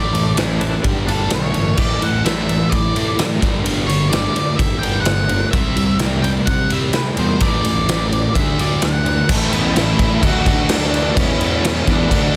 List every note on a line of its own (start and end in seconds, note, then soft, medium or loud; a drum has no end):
0.00 0.76 A1 loud
0.00 0.12 A2 medium
0.00 0.84 A2 medium
0.00 0.12 E3 loud
0.00 0.13 A3 loud
0.00 0.37 D5 medium
0.13 0.35 A2 medium
0.13 0.35 E3 medium
0.13 0.84 A3 medium
0.13 ride medium
0.36 0.59 A2 medium
0.36 0.59 E3 loud
0.36 0.60 A3 loud
0.36 0.84 E4 medium
0.36 snare loud
0.36 ride loud
0.60 0.82 A2 medium
0.60 0.82 E3 medium
0.60 0.84 D4 medium
0.60 ride medium
0.83 1.27 G1 medium
0.83 1.06 G2 medium
0.83 1.05 D3 medium
0.83 1.28 G3 medium
0.83 1.06 G3 loud
0.83 kick loud
0.83 ride medium
1.06 1.29 G2 medium
1.06 1.29 D3 medium
1.06 1.30 G3 loud
1.06 1.78 D4 medium
1.06 1.33 A4 medium
1.06 ride medium
1.29 1.52 G2 medium
1.29 1.52 D3 medium
1.29 1.77 G3 medium
1.29 snare loud
1.29 ride medium
1.33 1.54 B1 medium
1.33 1.79 C#5 medium
1.54 1.77 A1 medium
1.54 1.76 G2 medium
1.54 1.76 D3 medium
1.54 1.78 A3 medium
1.54 ride medium
1.77 2.63 A1 loud
1.77 2.00 A2 medium
1.77 2.00 E3 loud
1.77 2.00 A3 loud
1.77 2.01 D5 loud
1.77 kick loud
1.77 crash loud
2.02 2.23 A2 medium
2.02 2.23 E3 medium
2.02 2.24 F#5 loud
2.02 ride medium
2.24 2.46 A2 medium
2.24 2.47 E3 medium
2.24 2.47 A3 loud
2.24 2.73 E5 medium
2.24 snare loud
2.24 ride loud
2.48 2.69 A2 medium
2.48 2.70 E3 medium
2.48 ride medium
2.70 2.93 A2 medium
2.70 3.36 A2 loud
2.70 2.93 E3 medium
2.70 3.14 D5 medium
2.70 kick loud
2.70 ride medium
2.95 3.15 A2 loud
2.95 3.15 E3 loud
2.95 3.18 A3 loud
2.95 ride medium
3.17 3.39 A2 medium
3.17 3.39 E3 medium
3.17 snare loud
3.17 ride loud
3.40 4.27 G1 medium
3.40 3.62 G2 medium
3.40 3.62 D3 medium
3.40 3.63 G3 loud
3.40 kick loud
3.40 ride medium
3.63 3.86 G2 loud
3.63 3.86 D3 medium
3.63 3.87 G3 loud
3.63 ride loud
3.87 4.09 G2 medium
3.87 4.09 D3 medium
3.87 4.09 C#5 medium
3.87 ride medium
4.09 4.32 G2 medium
4.09 4.33 D3 loud
4.09 4.34 G3 loud
4.09 4.59 D5 medium
4.09 snare loud
4.09 ride loud
4.34 4.56 G2 medium
4.34 4.56 D3 medium
4.34 ride medium
4.56 5.44 G1 medium
4.56 4.80 G2 medium
4.56 4.80 D3 medium
4.56 4.78 E5 loud
4.56 kick loud
4.56 ride medium
4.79 5.04 G2 loud
4.79 5.05 D3 loud
4.79 5.05 G3 loud
4.79 5.00 G5 loud
4.83 ride medium
5.00 5.50 F#5 loud
5.05 5.27 G2 medium
5.05 5.27 D3 medium
5.05 snare loud
5.05 ride loud
5.29 5.51 G2 medium
5.29 5.51 D3 medium
5.29 ride medium
5.51 6.38 C2 loud
5.51 5.75 C3 medium
5.51 5.75 G3 loud
5.51 5.75 C4 loud
5.51 5.95 E5 medium
5.51 kick loud
5.51 ride medium
5.77 5.98 C3 medium
5.77 5.98 G3 medium
5.77 ride medium
5.99 6.23 C3 medium
5.99 6.23 G3 medium
5.99 6.23 C4 loud
5.99 snare loud
5.99 ride medium
6.22 6.45 C3 medium
6.22 6.45 G3 medium
6.22 6.29 G5 loud
6.22 ride medium
6.46 7.10 C3 loud
6.46 6.68 C3 medium
6.46 6.69 G3 medium
6.46 6.71 F#5 medium
6.46 kick loud
6.46 ride medium
6.70 6.93 C3 medium
6.70 6.93 G3 loud
6.70 6.94 C4 loud
6.70 6.78 E5 medium
6.70 ride medium
6.93 7.15 C3 medium
6.93 7.16 G3 medium
6.93 7.00 B4 medium
6.93 snare loud
6.93 ride loud
7.17 7.39 E2 medium
7.17 7.39 C3 medium
7.17 7.39 G3 medium
7.17 7.41 C5 medium
7.17 ride medium
7.40 8.26 A1 loud
7.40 7.62 A2 loud
7.40 7.64 E3 loud
7.40 7.64 A3 loud
7.40 8.38 D5 medium
7.40 kick loud
7.40 ride loud
7.64 7.85 A2 medium
7.64 7.86 E3 medium
7.64 ride medium
7.88 8.09 A2 loud
7.88 8.10 E3 medium
7.88 8.10 A3 medium
7.88 snare loud
7.88 ride loud
8.10 8.32 A2 medium
8.10 8.32 E3 medium
8.10 ride medium
8.34 9.20 D2 medium
8.34 8.57 D3 medium
8.34 8.57 A3 medium
8.34 8.57 D4 loud
8.34 8.59 E5 medium
8.34 kick loud
8.34 ride loud
8.58 8.80 D3 loud
8.58 8.81 A3 loud
8.58 8.81 D4 loud
8.58 8.84 D5 medium
8.58 ride medium
8.82 9.03 D3 medium
8.82 9.04 A3 medium
8.82 9.26 F#5 medium
8.82 snare loud
8.82 ride loud
9.05 9.26 D3 medium
9.05 9.26 A3 medium
9.05 ride medium
9.29 9.92 A1 loud
9.29 9.73 A2 loud
9.29 9.74 E3 loud
9.29 9.54 A3 loud
9.29 9.52 A3 medium
9.29 9.53 C#4 loud
9.29 9.52 E4 loud
9.29 9.51 A4 loud
9.29 kick loud
9.29 crash loud
9.29 crash medium
9.52 9.74 A3 medium
9.52 9.77 B3 medium
9.52 9.75 C#4 medium
9.52 9.74 E4 medium
9.52 9.75 A4 medium
9.52 crash medium
9.75 10.21 A2 loud
9.75 10.20 E3 medium
9.75 9.98 A3 loud
9.75 9.97 C#4 loud
9.75 9.98 E4 loud
9.75 10.21 E4 medium
9.75 9.96 A4 loud
9.75 snare loud
9.75 crash medium
9.97 10.20 A1 medium
9.97 10.19 A3 medium
9.97 10.21 C#4 medium
9.97 10.21 E4 medium
9.97 10.20 A4 medium
9.97 kick loud
9.97 crash medium
10.20 10.44 D2 loud
10.20 10.68 D3 loud
10.20 10.68 A3 loud
10.20 10.47 D4 loud
10.20 10.46 F#4 loud
10.20 10.45 A4 loud
10.20 kick medium
10.20 crash medium
10.26 10.73 F#4 loud
10.46 11.10 D2 loud
10.46 10.69 D4 medium
10.46 10.69 F#4 medium
10.46 10.70 A4 medium
10.46 kick medium
10.46 crash medium
10.69 11.15 A3 medium
10.69 11.15 D4 medium
10.69 11.18 D4 loud
10.69 11.16 F#4 medium
10.69 11.16 A4 medium
10.69 snare loud
10.69 crash loud
10.82 snare soft
10.94 crash medium
11.15 11.80 E2 loud
11.15 11.61 E3 loud
11.15 11.41 G#3 loud
11.15 11.39 B3 loud
11.15 11.64 C#4 loud
11.15 11.39 E4 loud
11.15 kick loud
11.15 crash medium
11.40 11.62 G#3 medium
11.40 11.63 B3 medium
11.40 11.63 E4 medium
11.40 crash medium
11.62 12.08 E3 medium
11.62 11.87 G#3 loud
11.62 11.86 B3 loud
11.62 11.89 C#4 medium
11.62 11.85 E4 loud
11.62 snare loud
11.62 crash loud
11.86 12.08 E2 medium
11.86 12.09 G#3 medium
11.86 12.09 B3 medium
11.86 12.36 D4 loud
11.86 12.09 E4 medium
11.86 kick medium
11.86 crash medium
12.09 12.33 D2 loud
12.09 12.36 D3 medium
12.09 12.34 A3 loud
12.09 12.34 D4 loud
12.09 12.32 F#4 loud
12.09 kick medium
12.09 crash medium